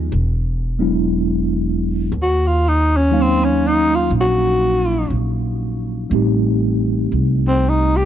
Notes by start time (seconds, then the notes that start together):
Already playing: F3 G#3 B3 D#4 F4
0.12 E1
0.79 F#3 G#3 B3 D4 E4
2.12 D#2
2.22 F#4
2.47 F4
2.68 D#4
2.96 C#4
3.11 F#3 A#3 C#4 D#4 F5
3.21 C4
3.44 C#4
3.68 D#4
3.95 F4
4.10 A#1
4.20 F#4
5.10 A#1
6.10 A1 G3 A3 C4
6.14 D#4 G4
7.12 C2
7.48 C4
7.69 D#4
7.96 G4